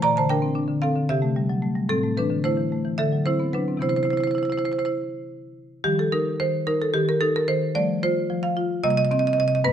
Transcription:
0.02 1.06 A#2 medium
0.02 0.16 D5 medium
0.02 0.16 A#5 loud
0.16 0.38 D3 medium
0.16 0.30 C5 medium
0.16 0.30 A5 medium
0.29 0.51 D4 medium
0.29 0.79 A#4 medium
0.29 0.81 G5 medium
0.42 0.56 C4 soft
0.55 0.77 D4 medium
0.68 0.90 D3 soft
0.82 1.04 C4 medium
0.82 1.08 A4 medium
0.82 1.08 F5 medium
0.96 1.09 D3 soft
1.09 1.87 C3 medium
1.09 1.35 G4 medium
1.09 1.35 E5 medium
1.22 1.44 A3 medium
1.36 1.57 G3 medium
1.49 1.63 F#3 medium
1.62 1.84 A3 soft
1.75 1.89 G3 medium
1.89 2.94 A2 medium
1.89 2.14 C4 medium
1.89 2.15 A4 medium
2.03 2.24 A3 soft
2.17 2.38 E3 medium
2.17 2.43 D4 medium
2.17 2.43 B4 medium
2.30 2.43 D3 soft
2.44 2.66 A3 soft
2.44 2.95 E4 medium
2.44 2.96 C5 medium
2.57 2.79 E3 soft
2.72 2.93 A3 soft
2.85 2.98 E3 soft
2.98 3.80 D3 medium
2.98 3.24 A4 medium
2.98 3.24 E5 medium
3.12 3.34 F#3 soft
3.25 3.48 C4 soft
3.25 3.52 E4 medium
3.25 3.52 C5 medium
3.40 3.53 B3 soft
3.53 3.76 F#3 soft
3.53 3.81 D4 medium
3.53 3.81 B4 medium
3.68 3.82 C4 soft
3.77 5.78 C3 medium
3.77 5.79 E3 soft
3.77 5.80 B3 soft
3.82 3.89 E4 medium
3.82 3.89 C5 medium
3.89 3.97 E4 soft
3.89 3.96 C5 medium
3.96 4.05 E4 medium
3.96 4.03 C5 medium
4.03 4.13 E4 soft
4.03 4.10 C5 medium
4.10 4.20 E4 soft
4.10 4.17 C5 medium
4.17 4.27 E4 soft
4.17 4.24 C5 medium
4.24 4.35 E4 medium
4.24 4.31 C5 medium
4.31 4.43 E4 soft
4.31 4.38 C5 medium
4.38 4.45 C5 medium
4.43 4.50 E4 soft
4.43 4.52 C5 medium
4.50 4.57 E4 soft
4.50 4.59 C5 medium
4.57 4.65 E4 medium
4.57 4.65 C5 medium
4.65 4.72 E4 soft
4.65 4.73 C5 medium
4.72 4.79 E4 soft
4.72 4.79 C5 medium
4.79 4.86 E4 soft
4.79 4.85 C5 medium
4.85 4.95 E4 soft
4.85 4.95 C5 medium
5.84 6.38 D#3 medium
5.84 7.71 F3 soft
5.84 7.71 G3 soft
5.84 5.98 G4 medium
5.99 6.13 A4 medium
6.12 6.66 D#4 medium
6.12 6.39 A#4 medium
6.40 6.93 D#3 medium
6.40 6.66 C5 medium
6.67 7.20 D#4 medium
6.67 6.81 A#4 medium
6.82 6.95 A4 medium
6.94 7.47 D#3 medium
6.94 7.07 G4 medium
7.09 7.21 A#4 medium
7.21 7.74 D#4 medium
7.21 7.34 A4 medium
7.36 7.49 A#4 medium
7.48 7.75 D#3 medium
7.48 7.74 C5 medium
7.75 8.29 F3 medium
7.75 8.79 G3 soft
7.75 8.80 A3 soft
7.75 8.02 D5 loud
8.03 8.55 F4 medium
8.03 8.42 C5 medium
8.30 8.82 F3 medium
8.43 8.82 F5 medium
8.57 8.83 F4 medium
8.83 9.37 C3 medium
8.83 9.60 G3 medium
8.83 9.60 A#3 medium
8.83 8.90 D#5 loud
8.90 8.97 D#5 medium
8.97 9.05 D#5 loud
9.05 9.11 D#5 medium
9.11 9.62 C4 medium
9.11 9.19 D#5 medium
9.19 9.27 D#5 medium
9.27 9.33 D#5 medium
9.33 9.40 D#5 medium
9.38 9.64 C3 medium
9.38 9.48 D#5 medium
9.48 9.55 D#5 medium
9.55 9.61 D#5 medium
9.64 9.73 G2 medium
9.64 9.73 A3 medium
9.64 9.73 B3 medium
9.64 9.73 B4 loud

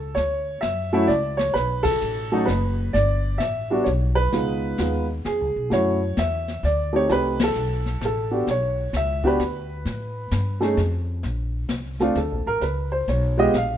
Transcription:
0.00 0.15 C#2 medium
0.00 0.18 A4 medium
0.15 0.61 D2 medium
0.15 0.59 C#5 medium
0.15 brush sweep soft
0.15 snare soft
0.61 1.08 F#2 medium
0.61 1.09 E5 medium
0.61 snare medium
0.61 hi-hat pedal medium
0.92 1.07 F#3 medium
0.92 1.07 A3 medium
0.92 1.08 C#4 medium
0.92 1.08 E4 medium
1.07 1.54 C#2 medium
1.07 1.39 D5 medium
1.07 snare soft
1.37 1.53 C#5 medium
1.37 snare medium
1.54 2.00 B1 medium
1.54 1.82 B4 medium
1.54 brush sweep soft
1.54 snare soft
1.83 2.48 A4 loud
1.83 kick medium
1.83 ride medium
2.01 2.46 A1 medium
2.01 hi-hat pedal medium
2.32 2.46 F#3 medium
2.32 2.46 A3 medium
2.32 2.46 C#4 medium
2.32 2.47 D#4 medium
2.45 2.92 F#1 medium
2.45 2.89 B4 medium
2.45 snare soft
2.93 3.39 G1 medium
2.93 3.41 D5 medium
2.93 brush sweep soft
2.93 snare soft
3.38 3.85 A1 medium
3.38 3.82 E5 medium
3.38 snare medium
3.38 hi-hat pedal medium
3.70 3.84 G3 medium
3.70 3.85 B3 medium
3.70 3.85 D4 medium
3.70 3.85 F#4 medium
3.84 4.31 B1 medium
3.84 3.91 C#5 medium
3.84 snare soft
4.15 5.04 B4 medium
4.32 4.77 C#2 medium
4.32 4.77 G#3 medium
4.32 4.77 B3 soft
4.32 4.77 D#4 medium
4.32 4.77 F4 medium
4.32 brush sweep medium
4.32 snare soft
4.78 5.24 D#2 medium
4.78 5.05 G#3 medium
4.78 5.06 B3 medium
4.78 5.06 D#4 soft
4.78 5.06 F4 medium
4.78 snare medium
4.78 hi-hat pedal medium
5.25 5.41 F2 medium
5.25 5.72 G#4 medium
5.25 snare soft
5.41 5.56 C#2 medium
5.56 5.70 B1 medium
5.70 6.16 F#2 medium
5.70 5.97 A3 medium
5.70 5.98 C#4 medium
5.70 5.98 E4 medium
5.70 5.98 F#4 medium
5.70 6.19 C#5 medium
5.70 brush sweep soft
5.70 snare soft
6.17 6.62 E2 medium
6.17 6.61 E5 medium
6.17 snare medium
6.17 hi-hat pedal medium
6.48 snare soft
6.63 7.08 D2 medium
6.63 6.92 D5 medium
6.63 snare soft
6.93 7.07 A3 medium
6.93 7.07 C4 medium
6.93 7.08 D#4 medium
6.93 7.09 G4 medium
6.93 7.09 C#5 loud
7.09 7.54 C2 medium
7.09 7.36 A3 medium
7.09 7.36 C4 medium
7.09 7.37 D#4 medium
7.09 7.37 G4 medium
7.09 7.41 B4 medium
7.09 brush sweep medium
7.09 snare soft
7.39 snare medium
7.39 ride medium
7.43 8.04 A4 medium
7.55 8.00 B1 medium
7.55 hi-hat pedal medium
7.86 snare soft
8.01 8.46 A1 medium
8.01 snare medium
8.01 hi-hat pedal soft
8.05 8.46 A4 medium
8.31 8.46 B3 medium
8.31 8.46 D4 medium
8.31 8.46 F#4 medium
8.31 8.46 G4 medium
8.47 8.92 B1 medium
8.47 8.92 C#5 medium
8.47 brush sweep soft
8.47 snare soft
8.93 9.38 C#2 medium
8.93 9.26 E5 medium
8.93 snare medium
8.93 hi-hat pedal medium
9.24 9.38 B3 medium
9.24 9.38 D4 medium
9.24 9.38 F#4 medium
9.24 9.38 G4 medium
9.24 10.75 B4 medium
9.24 kick soft
9.40 9.84 D2 medium
9.40 snare soft
9.85 10.30 A2 medium
9.85 brush sweep medium
9.85 snare soft
10.31 10.76 G2 medium
10.31 snare medium
10.31 hi-hat pedal medium
10.60 10.75 A3 medium
10.60 10.76 C#4 medium
10.60 10.76 D#4 medium
10.60 10.76 G#4 medium
10.60 snare soft
10.77 11.22 F2 medium
10.77 snare soft
11.23 11.68 A#1 medium
11.23 brush sweep soft
11.23 snare soft
11.68 12.15 C2 medium
11.68 snare medium
11.68 hi-hat pedal medium
11.99 12.14 A3 medium
11.99 12.15 C4 medium
11.99 12.15 D4 medium
11.99 12.15 F4 medium
11.99 snare soft
12.15 12.31 D2 medium
12.15 12.46 A4 medium
12.15 snare soft
12.31 12.46 A#1 medium
12.46 12.61 A1 medium
12.46 12.62 A#4 medium
12.61 13.06 C#2 medium
12.61 12.91 B4 medium
12.61 brush sweep soft
12.61 snare soft
12.92 13.07 C5 medium
13.08 13.53 B1 medium
13.08 13.38 C#5 medium
13.08 snare soft
13.37 13.52 G#3 medium
13.37 13.53 B3 medium
13.37 13.53 F4 medium
13.37 13.53 G4 medium
13.37 13.54 D#5 medium
13.54 13.77 A#1 medium
13.54 13.77 F5 medium
13.54 snare medium
13.54 hi-hat pedal soft

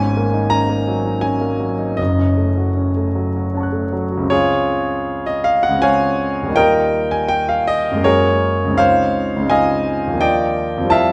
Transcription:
0.00 1.95 G#1 medium
0.00 1.95 G#2 medium
0.00 0.27 C#4 medium
0.00 0.51 G#5 loud
0.17 0.45 A#3 medium
0.34 0.62 D#4 soft
0.50 0.80 C#4 medium
0.50 1.22 A#5 loud
0.69 0.98 A#3 medium
0.88 1.16 F#3 medium
1.06 1.35 D#4 soft
1.21 1.53 C#4 medium
1.21 1.98 G#5 loud
1.41 1.72 A#3 medium
1.60 1.91 F#3 soft
1.79 1.99 D#4 medium
1.97 4.27 F#1 medium
1.97 4.27 F#2 medium
1.97 3.91 D#5 medium
2.18 2.49 C#4 soft
2.37 2.69 A3 soft
2.57 2.88 F#4 soft
2.77 3.08 C#4 soft
2.97 3.27 A3 soft
3.15 3.46 F#3 soft
3.36 3.66 F#4 soft
3.54 3.85 C#4 soft
3.54 4.28 F#5 soft
3.54 4.29 A5 soft
3.60 4.31 C#6 soft
3.60 4.32 F#6 soft
3.73 4.04 A3 soft
3.93 4.24 F#3 soft
4.12 4.31 F#4 soft
4.17 5.67 C#2 medium
4.17 5.70 G#3 soft
4.22 5.73 C4 soft
4.30 5.22 F4 medium
4.30 5.22 G#4 medium
4.30 5.25 C#5 loud
5.26 5.45 D#5 medium
5.44 5.63 F5 loud
5.63 5.82 F#5 loud
5.69 6.47 C#2 medium
5.69 6.48 G#3 soft
5.75 6.50 C4 soft
5.75 6.51 F4 soft
5.82 6.52 C#5 medium
5.82 6.52 F5 medium
5.82 6.56 G#5 loud
6.43 7.95 D#2 medium
6.43 7.96 G3 soft
6.48 7.96 A#3 soft
6.48 7.99 D#4 soft
6.54 8.01 F4 soft
6.54 7.08 A#4 medium
6.54 7.08 D#5 medium
6.54 7.11 G5 loud
7.11 7.30 G#5 medium
7.29 7.48 G5 loud
7.49 7.68 F5 loud
7.67 8.05 D#5 loud
7.91 8.70 F#2 medium
7.91 8.66 G#3 soft
7.97 8.73 A#3 medium
7.97 8.74 C#4 soft
8.03 8.76 F#4 soft
8.03 8.75 G#4 medium
8.03 8.75 A#4 medium
8.03 8.77 C#5 loud
8.65 9.35 C#2 medium
8.65 9.39 G#3 soft
8.71 9.41 C4 soft
8.71 9.44 D#4 soft
8.77 9.47 F4 medium
8.77 9.47 C5 medium
8.77 9.46 C#5 medium
8.77 9.49 F5 loud
9.36 10.12 C#2 medium
9.36 10.14 G#3 medium
9.43 10.15 C4 medium
9.43 10.17 D#4 soft
9.49 10.18 F4 soft
9.49 10.17 D#5 medium
9.49 10.17 F5 medium
9.49 10.21 G#5 loud
10.07 10.82 D#2 medium
10.07 10.79 F3 soft
10.13 10.85 A#3 soft
10.13 10.87 D4 soft
10.19 10.88 F4 medium
10.19 10.88 D5 medium
10.19 10.88 D#5 medium
10.19 10.91 G5 loud
10.78 11.12 F2 medium
10.78 11.12 F3 medium
10.84 11.12 G3 medium
10.84 11.12 C4 medium
10.89 11.12 E4 medium
10.89 11.12 E5 medium
10.89 11.12 F5 medium
10.89 11.12 A5 loud

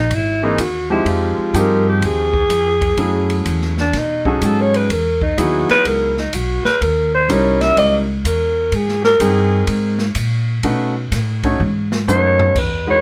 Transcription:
0.00 0.16 D#4 medium
0.10 0.57 G#1 medium
0.10 kick soft
0.10 ride medium
0.14 0.46 E4 medium
0.43 0.57 E3 medium
0.43 0.58 A#3 medium
0.43 0.58 C4 medium
0.43 0.58 D#4 medium
0.43 0.62 D#4 medium
0.43 0.58 G#4 medium
0.58 1.05 D#2 medium
0.58 0.91 F#4 medium
0.58 kick soft
0.58 hi-hat pedal medium
0.58 ride medium
0.90 1.51 F3 medium
0.90 1.51 G#3 medium
0.90 1.51 C4 medium
0.90 1.52 D#4 medium
0.90 1.10 E4 medium
0.90 1.52 G4 medium
1.05 1.35 F2 medium
1.05 1.59 F4 medium
1.05 kick soft
1.05 ride medium
1.39 muted upright bass stroke soft
1.54 2.01 G2 loud
1.54 2.28 F3 medium
1.54 2.28 C4 medium
1.54 2.28 D#4 medium
1.54 2.28 G4 medium
1.54 2.28 G#4 medium
1.54 kick soft
1.54 hi-hat pedal medium
1.54 ride medium
1.58 1.88 A#4 loud
1.89 2.08 G4 medium
2.01 2.48 D#2 medium
2.01 kick soft
2.01 ride medium
2.06 3.48 G#4 loud
2.33 kick medium
2.49 2.96 F2 medium
2.49 kick soft
2.49 hi-hat pedal medium
2.49 ride medium
2.81 kick medium
2.81 ride medium
2.97 3.44 F#2 medium
2.97 3.71 F#3 medium
2.97 3.71 A3 medium
2.97 3.71 C#4 medium
2.97 3.72 E4 medium
2.97 3.72 G#4 medium
2.97 ride medium
3.30 ride medium
3.46 3.92 E2 loud
3.46 kick soft
3.46 hi-hat pedal soft
3.46 ride medium
3.62 snare soft
3.78 4.00 D4 medium
3.78 snare soft
3.93 4.40 B2 medium
3.93 kick soft
3.93 snare soft
3.93 ride medium
3.98 4.27 D#4 medium
4.25 4.86 F#3 medium
4.25 4.87 C#4 medium
4.25 4.87 D#4 medium
4.25 4.47 F#4 medium
4.25 4.87 G#4 medium
4.25 4.87 A4 medium
4.25 kick medium
4.41 4.88 G#2 medium
4.41 4.62 A4 medium
4.41 hi-hat pedal medium
4.41 ride medium
4.61 4.78 C#5 loud
4.74 4.93 B4 medium
4.74 ride medium
4.90 5.36 E2 medium
4.90 5.24 A#4 medium
4.90 kick soft
4.90 ride medium
5.21 5.41 D#4 medium
5.21 kick medium
5.37 5.67 D#2 medium
5.37 6.11 F#3 medium
5.37 6.11 B3 medium
5.37 6.11 D#4 medium
5.37 6.11 E4 medium
5.37 5.70 F#4 medium
5.37 6.11 G#4 medium
5.37 kick soft
5.37 hi-hat pedal soft
5.37 ride medium
5.69 5.89 B4 loud
5.69 muted upright bass stroke soft
5.69 snare soft
5.69 ride soft
5.85 6.32 C#2 medium
5.85 6.18 A#4 medium
5.85 kick soft
5.85 ride medium
6.17 6.36 D#4 medium
6.17 snare soft
6.33 6.63 B1 medium
6.33 6.65 F#4 medium
6.33 kick soft
6.33 hi-hat pedal medium
6.33 ride medium
6.64 6.84 B4 loud
6.64 muted upright bass stroke soft
6.64 snare medium
6.81 7.28 D#2 medium
6.81 7.13 A#4 medium
6.81 kick soft
6.81 ride medium
7.14 7.33 C5 loud
7.29 7.75 C2 loud
7.29 8.02 G3 medium
7.29 8.02 C#4 medium
7.29 8.03 D#4 medium
7.29 8.03 E4 medium
7.29 8.03 A#4 medium
7.29 7.63 C#5 medium
7.29 kick soft
7.29 hi-hat pedal soft
7.29 ride medium
7.61 7.77 E5 loud
7.61 snare soft
7.61 ride medium
7.77 8.23 C#2 medium
7.77 7.97 D#5 loud
7.77 kick soft
7.77 ride medium
8.24 8.71 E2 medium
8.24 8.77 A#4 medium
8.24 kick soft
8.24 hi-hat pedal medium
8.24 ride medium
8.72 9.19 G#2 medium
8.72 9.04 G#4 medium
8.72 kick soft
8.72 ride medium
8.89 snare soft
9.04 9.23 A#4 loud
9.04 snare soft
9.20 9.67 G2 medium
9.20 9.94 C4 medium
9.20 9.94 D#4 medium
9.20 9.94 G#4 medium
9.20 9.69 G#4 loud
9.20 9.94 A#4 medium
9.20 9.94 G5 medium
9.20 kick soft
9.20 hi-hat pedal medium
9.20 ride medium
9.67 10.14 G#2 medium
9.67 kick soft
9.67 ride medium
9.99 snare medium
10.15 10.62 A#2 medium
10.15 kick soft
10.15 hi-hat pedal medium
10.15 ride medium
10.63 11.10 B2 medium
10.63 10.93 A3 medium
10.63 10.93 C#4 medium
10.63 10.93 D#4 medium
10.63 10.93 F#4 medium
10.63 10.93 B4 medium
10.63 kick soft
10.63 ride medium
11.12 11.58 A2 loud
11.12 kick soft
11.12 snare soft
11.12 hi-hat pedal medium
11.12 ride medium
11.43 11.59 A3 medium
11.43 11.59 C#4 medium
11.43 11.59 D#4 medium
11.43 11.59 F#4 medium
11.43 11.59 C#5 medium
11.43 kick medium
11.43 ride soft
11.60 12.07 G#2 medium
11.60 high tom medium
11.92 snare medium
12.07 12.54 F#2 medium
12.07 12.56 A3 medium
12.07 12.56 C#4 medium
12.07 12.56 D#4 medium
12.07 12.56 F#4 medium
12.07 12.57 B4 medium
12.07 12.60 C#5 loud
12.07 floor tom medium
12.07 hi-hat pedal medium
12.39 floor tom loud
12.56 13.01 E2 medium
12.56 12.89 B4 medium
12.56 kick medium
12.56 crash medium
12.87 13.01 G#3 medium
12.87 13.01 D#4 medium
12.87 13.01 E4 medium
12.87 13.01 F#4 medium
12.87 13.01 B4 medium
12.87 13.01 C#5 loud

